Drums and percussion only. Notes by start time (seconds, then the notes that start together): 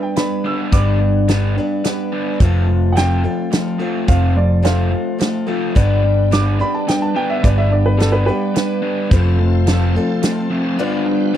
0.16 snare, closed hi-hat
0.72 kick, closed hi-hat
1.28 snare, closed hi-hat
1.84 snare, closed hi-hat
2.40 kick, closed hi-hat
2.97 snare, closed hi-hat
3.52 snare, closed hi-hat
4.08 kick, closed hi-hat
4.65 snare, closed hi-hat
5.20 snare, closed hi-hat
5.76 kick, closed hi-hat
6.32 snare, closed hi-hat
6.88 snare, closed hi-hat
7.44 kick, closed hi-hat
8.00 snare, closed hi-hat
8.56 snare, closed hi-hat
9.11 kick, closed hi-hat
9.67 snare, closed hi-hat
10.23 snare, closed hi-hat